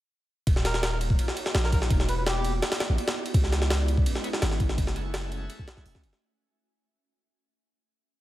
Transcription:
0.47 D#1, kick, ride
0.56 snare
0.65 A#4, snare, ride
0.74 snare
0.83 A#4, snare, ride
0.92 A#4
1.01 ride
1.10 kick
1.19 ride
1.28 snare
1.37 ride
1.46 snare
1.55 A#1, snare, ride
1.64 A#4, snare
1.72 A#4, kick, ride
1.82 snare
1.90 E1, kick, ride
2.00 snare
2.09 B4, ride
2.18 B4
2.26 G4, snare, ride
2.44 ride
2.62 snare, ride
2.72 snare, ride
2.80 snare, ride
2.90 A1
2.98 ride
3.08 snare, ride
3.26 ride
3.34 C#2, kick, ride
3.44 snare
3.52 snare, ride
3.62 snare
3.70 snare, ride
3.88 ride
3.97 kick
4.06 ride
4.15 snare
4.24 B3 D#4 E4 C#5, ride
4.33 snare
4.42 G#1, snare, ride
4.51 snare
4.60 kick, ride
4.69 snare
4.78 F#1, kick, ride
4.87 snare
4.96 E4 G#4 A4 F#5, ride
5.14 snare, ride
5.32 ride
5.50 ride
5.59 kick
5.68 snare, ride
5.77 B1, snare
5.86 E1, open hi-hat
5.95 C#2, snare
6.03 F#1, ride
6.13 snare

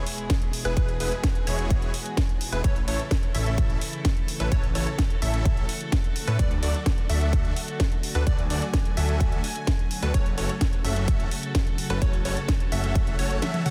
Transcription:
Already playing: B2 E3 G#3 E4 G#4, sub drop
0.07 open hi-hat
0.18 closed hi-hat
0.30 kick, snare, closed hi-hat
0.42 closed hi-hat
0.53 open hi-hat
0.65 E1 G#3 B3 E4 G#4 B4, closed hi-hat
0.77 E1 G#3 B3 E4 F#4 G#4 B4, kick, closed hi-hat
0.89 closed hi-hat
1.00 E1 G#3 B3 E4 G#4 B4, open hi-hat
1.12 closed hi-hat
1.23 kick, snare, closed hi-hat
1.35 closed hi-hat
1.47 E1 G#3 B3 E4 G#4 C#5, open hi-hat
1.59 closed hi-hat
1.70 kick, closed hi-hat
1.82 closed hi-hat
1.94 open hi-hat
2.06 closed hi-hat
2.17 kick, snare, closed hi-hat
2.29 closed hi-hat
2.41 open hi-hat
2.52 E1 G#3 B3 E4 G#4 B4, closed hi-hat
2.64 A1 C#3 A3 C#4 E4 A4 C#5, kick, closed hi-hat
2.76 closed hi-hat
2.88 A1 A3 C#4 E4 A4 C#5, open hi-hat
2.99 closed hi-hat
3.11 kick, snare, closed hi-hat
3.23 closed hi-hat
3.34 A1 A3 C#4 E4 A4 E5, open hi-hat
3.46 closed hi-hat
3.58 kick, closed hi-hat
3.70 closed hi-hat
3.81 open hi-hat
3.93 closed hi-hat
4.05 kick, snare, closed hi-hat
4.17 closed hi-hat
4.28 open hi-hat
4.40 A1 A3 C#4 E4 A4 B4, closed hi-hat
4.52 A1 A3 C#4 E4 F#4 A4 C#5, kick, closed hi-hat
4.63 closed hi-hat
4.75 A1 A3 C#4 E4 A4 C#5, open hi-hat
4.87 closed hi-hat
4.98 kick, snare, closed hi-hat
5.10 closed hi-hat
5.22 A1 A3 C#4 E4 A4 E5, open hi-hat
5.34 closed hi-hat
5.45 kick, closed hi-hat
5.57 closed hi-hat
5.69 open hi-hat
5.81 closed hi-hat
5.92 kick, snare, closed hi-hat
6.04 closed hi-hat
6.16 open hi-hat
6.27 A2 A3 C#4 E4 A4 B4, closed hi-hat
6.39 D2 D3 F#3 A3 D4 F#4 A4 D5, kick, closed hi-hat
6.51 closed hi-hat
6.63 D2 A3 D4 F#4 A4 D5, open hi-hat
6.74 closed hi-hat
6.86 kick, snare, closed hi-hat
6.98 closed hi-hat
7.09 D2 A3 D4 F#4 A4 E5, open hi-hat
7.21 closed hi-hat
7.33 kick, closed hi-hat
7.45 closed hi-hat
7.56 open hi-hat
7.68 closed hi-hat
7.80 kick, snare, closed hi-hat
7.92 closed hi-hat
8.03 open hi-hat
8.15 D2 A3 D4 F#4 A4 B4, closed hi-hat
8.27 D2 A3 D4 F#4 A4 D5 G#5, kick, closed hi-hat
8.39 closed hi-hat
8.50 D2 A3 D4 F#4 A4 D5, open hi-hat
8.62 closed hi-hat
8.73 kick, snare, closed hi-hat
8.85 closed hi-hat
8.97 D2 A3 D4 F#4 A4 E5, open hi-hat
9.09 closed hi-hat
9.20 kick, closed hi-hat
9.32 closed hi-hat
9.44 open hi-hat
9.56 closed hi-hat
9.67 kick, snare, closed hi-hat
9.79 closed hi-hat
9.91 open hi-hat
10.02 D2 A3 D4 F#4 A4 B4, closed hi-hat
10.14 F#1 C#3 A3 C#4 F#4 A4 C#5, kick, closed hi-hat
10.26 closed hi-hat
10.38 F#1 A3 C#4 F#4 A4 C#5, open hi-hat
10.49 closed hi-hat
10.61 kick, snare, closed hi-hat
10.73 closed hi-hat
10.84 F#1 A3 C#4 F#4 A4 E5, open hi-hat
10.96 closed hi-hat
11.08 kick, closed hi-hat
11.20 closed hi-hat
11.31 open hi-hat
11.43 closed hi-hat
11.55 kick, snare, closed hi-hat
11.67 closed hi-hat
11.78 open hi-hat
11.90 F#1 A3 C#4 F#4 A4 B4, closed hi-hat
12.02 F#1 A3 C#4 F#4 A4 C#5, kick, closed hi-hat
12.13 closed hi-hat
12.25 F#1 A3 C#4 F#4 A4 C#5, open hi-hat
12.37 closed hi-hat
12.48 kick, snare, closed hi-hat
12.60 closed hi-hat
12.72 F#1 A3 C#4 F#4 A4 E5, open hi-hat
12.84 closed hi-hat
12.95 kick, closed hi-hat
13.07 closed hi-hat
13.19 F#1 A3 C#4 F#4 A4 C#5, open hi-hat
13.31 closed hi-hat
13.42 A3 C#4 F#4 A4 E5, snare, closed hi-hat, high tom
13.54 closed hi-hat, high tom
13.66 A3 C#4 F#4 A4 F#5, open hi-hat, mid tom

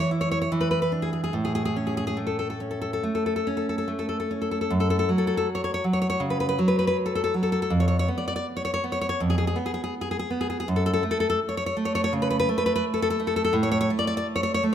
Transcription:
Already playing: E3
0.11 E4
0.21 C#5
0.31 C#5
0.42 C#5
0.52 E3
0.61 B4
0.71 B4
0.82 B4
0.92 D4
1.02 G#4
1.13 G#4
1.24 G#4
1.33 A2
1.45 G#4
1.55 G#4
1.65 G#4
1.76 C#4
1.87 G#4
1.97 G#4
2.07 G#4
2.17 A3
2.27 A4
2.39 A4
2.50 A4
2.60 C#4
2.71 A4
2.81 A4
2.93 A4
3.03 A3
3.15 A4
3.26 A4
3.36 A4
3.47 C#4
3.57 A4
3.69 A4
3.78 A4
3.88 A3
3.99 A4
4.09 A4
4.20 A4
4.31 C#4
4.42 A4
4.51 A4
4.61 A4
4.70 F#2
4.80 A4
4.90 A4
4.99 A4
5.09 F#3
5.18 A4
5.27 A4
5.37 A4
5.55 C#5
5.64 C#5
5.74 C#5
5.84 F#3
5.93 C#5
6.02 C#5
6.10 C#5
6.20 C#3
6.30 B4
6.40 B4
6.49 B4
6.59 F#3
6.68 B4
6.79 B4
6.87 B4
7.06 A4
7.15 A4
7.24 A4
7.34 F#3
7.43 A4
7.52 A4
7.62 A4
7.70 F2
7.80 C#5
7.88 C#5
7.99 C#5
8.08 B3
8.18 D5
8.28 D5
8.36 D5
8.57 C#5
8.65 C#5
8.74 C#5
8.84 B3
8.92 C#5
9.01 C#5
9.09 C#5
9.20 F2
9.30 G#4
9.38 G#4
9.47 G#4
9.56 B3
9.66 G#4
9.74 G#4
9.84 G#4
10.01 G#4
10.11 G#4
10.19 G#4
10.30 B3
10.41 G#4
10.50 G#4
10.60 G#4
10.68 F#2
10.76 A4
10.86 A4
10.93 A4
11.03 A3
11.11 A4
11.20 A4
11.30 A4
11.49 C#5
11.57 C#5
11.66 C#5
11.77 A3
11.85 C#5
11.95 C#5
12.04 C#5
12.13 C#3
12.22 B4
12.30 B4
12.39 B4
12.49 A3
12.58 B4
12.66 B4
12.76 B4
12.94 A4
13.02 A4
13.10 A4
13.20 A3
13.27 A4
13.36 A4
13.44 A4
13.53 A2
13.63 C#5
13.72 C#5
13.81 C#5
13.90 A3
13.99 D5
14.07 D5
14.17 D5
14.36 C#5
14.43 C#5
14.54 C#5
14.63 A3

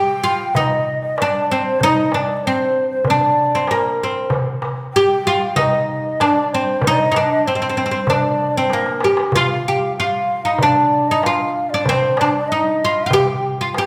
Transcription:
Already playing: G4 G5
0.24 F4
0.55 D#4 D#5, darbuka dum
1.02 D#5, darbuka ka
1.17 D5, darbuka tek
1.22 D4
1.50 C4 C5
1.80 D#4 D#5, darbuka dum
2.05 D#5
2.12 D4 D5, darbuka tek
2.36 D5
2.42 C5, darbuka ka
2.47 C4
2.91 C5
3.05 D5, darbuka dum
3.10 D4
3.52 C4, darbuka ka
3.67 A#3 A#4, darbuka tek
4.03 C4
4.30 darbuka dum
4.62 darbuka tek
4.93 G4 G5, darbuka ka
5.27 F4
5.56 D#4 D#5, darbuka dum
6.04 darbuka ka
6.20 D4 D5, darbuka tek
6.54 C4 C5
6.82 D#5, darbuka dum
6.87 D#4
7.12 D#4, darbuka tek
7.16 D4
7.45 C4 C5, darbuka ka
7.55 C4
7.62 C4
7.69 C4
7.77 C4, darbuka ka
7.86 C4
7.91 C4
8.07 D4 D5, darbuka dum
8.17 D#5
8.22 D5
8.39 darbuka ka
8.54 C4 C5, darbuka ka
8.70 A#3 A#4, darbuka tek
8.86 darbuka ka
9.00 G4, darbuka tek
9.17 darbuka ka
9.32 F4 F5, darbuka dum
9.68 G4
9.96 F4 F5, darbuka ka
10.45 D#4
10.59 D5, darbuka dum
10.63 D4
11.07 D#5, darbuka ka
11.11 D#4
11.22 F4 F5, darbuka tek
11.70 D5
11.74 D4
11.85 C5, darbuka dum
11.89 C4
12.17 D4 D5, darbuka tek
12.48 D#4 D#5, darbuka ka
12.85 F4
13.06 F4 G5
13.11 G4, darbuka dum
13.58 F4, darbuka ka
13.73 G5, darbuka tek
13.78 G4

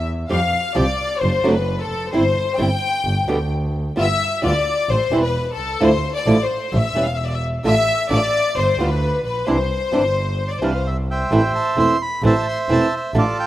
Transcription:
Already playing: E2
0.29 F2 F3 G3 C4 G4 F5
0.75 C2 F3 G3 C4 G4 D5
1.19 F#1 C5
1.44 F#1 C3 F#3 A3 D4 F#4
1.50 B4
1.81 A4
1.90 F1
2.11 G1 G3 C4 E4 C5
2.57 G1 G3 C4 E4 G5
3.05 G1
3.27 D2 B2 D3 G3 B3 G4
3.96 G1 G3 B3 F4 E5
4.42 D2 G3 B3 F4 D5
4.89 A1 C5
5.12 E1 E3 G3 C4 E4
5.22 B4
5.52 A4
5.58 C2
5.81 D2 D3 F3 A3 D4 E4 C5
6.13 D5
6.26 A1 D3 F3 A3 D4 E4
6.43 C5
6.73 A1 E5
6.95 E1 E3 G3 C#4 E4
7.06 F5
7.15 E5
7.25 D5
7.33 E5
7.64 A1 D3 A3 D4 F4 E5
8.10 A1 D3 A3 D4 F4 D5
8.56 G1 C5
8.79 D2 G3 B3 F4
8.87 B4
9.24 A#1 B4
9.47 C2 C3 E3 G3 D4 E4 C5
9.92 G1 C3 E3 G3 D4 E4
10.49 D5
10.58 C2 C3 E3 D4 C5
10.62 G3 E4 F5
10.66 B4
10.76 C5
10.87 E5
11.11 C5 E5 G5
11.30 A1 E3 A3 C4 E4
11.55 A5
11.77 E1 E3 A3 C4 E4 C6
12.02 B5
12.22 A1 E3 A3 C4 E4 C5 E5
12.27 A5
12.49 C6
12.69 E1 E3 A3 C4 E4 A5
12.97 E5
13.14 A1 D3 A3 D4 F4
13.18 F4 A4 D5
13.40 G5

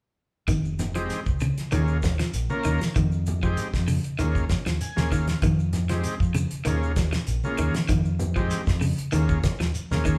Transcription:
0.48 F1 D#3, kick, closed hi-hat, low conga, shekere
0.65 shekere
0.79 snare, closed hi-hat, low conga, shekere
0.95 F3 G#3 C4 D#4 G4, closed hi-hat, shekere
1.10 snare, closed hi-hat, shekere
1.26 C#2, kick, shekere
1.40 C#3, closed hi-hat, high conga, shekere
1.58 snare, closed hi-hat, shekere
1.71 D#2 D#3 A#3 C#4 F4 G#4, closed hi-hat, high conga, shekere
1.87 shekere
2.03 kick, snare, closed hi-hat, high conga, shekere
2.19 F3, snare, closed hi-hat, shekere
2.33 A#1, closed hi-hat, shekere
2.50 A#3 C#4 F4 A#4, high conga, shekere
2.64 D#2 D#3, closed hi-hat, high conga, shekere
2.81 muted fingered electric bass stroke, snare, closed hi-hat, shekere
2.95 F2 D#3, kick, closed hi-hat, low conga, shekere
3.12 shekere
3.26 closed hi-hat, low conga, shekere
3.43 F3 G#3 C4 D#4 G4, kick, shekere
3.57 closed hi-hat, shekere
3.74 F2, kick, snare, shekere
3.88 C#3, open hi-hat, high conga, shekere
4.04 closed hi-hat, shekere
4.19 D#2 D#3 A#3 C#4 F4 G#4, closed hi-hat, high conga, shekere
4.35 kick, shekere
4.49 kick, snare, closed hi-hat, high conga, shekere
4.66 D#2 F3, snare, closed hi-hat, shekere
4.81 G#5, closed hi-hat, shekere
4.96 D#2 A#3 C#4 F4 G#4, snare, high conga, shekere
5.11 D#3 F5, kick, snare, closed hi-hat, shekere
5.28 snare, closed hi-hat, shekere
5.42 F2 D#3, kick, closed hi-hat, low conga, shekere
5.59 shekere
5.73 snare, closed hi-hat, low conga, shekere
5.89 F3 G#3 C4 D#4 G4, snare, closed hi-hat, high conga, shekere
6.04 closed hi-hat, shekere
6.20 F2, kick, shekere
6.34 C#3, closed hi-hat, high conga, shekere
6.51 closed hi-hat, shekere
6.65 D#2 D#3 A#3 C#4 F4 G#4, closed hi-hat, high conga, shekere
6.83 shekere
6.96 kick, snare, closed hi-hat, high conga, shekere
7.13 muted clean electric guitar stroke, snare, closed hi-hat, shekere
7.27 A#1, closed hi-hat, shekere
7.44 A#3 C#4 F4 G#4, high conga, shekere
7.58 D#2 D#3, closed hi-hat, shekere
7.75 muted fingered electric bass stroke, snare, closed hi-hat, shekere
7.88 F2 D#3, kick, closed hi-hat, low conga, shekere
8.05 shekere
8.19 closed hi-hat, low conga, shekere
8.36 F3 G#3 C4 D#4 G4, kick, shekere
8.50 snare, closed hi-hat, shekere
8.67 F2, kick, snare, shekere
8.81 C#3, open hi-hat, high conga, shekere
8.97 closed hi-hat, shekere
9.12 D#2 D#3 A#3 C#4 F4 G#4, closed hi-hat, high conga, shekere
9.29 kick, shekere
9.44 kick, snare, closed hi-hat, high conga, shekere
9.60 D#2 F3, snare, closed hi-hat, shekere
9.75 closed hi-hat, shekere
9.91 D#2 A#3 C#4 F4 G#4, snare, high conga, shekere
10.05 D#3, kick, closed hi-hat, shekere

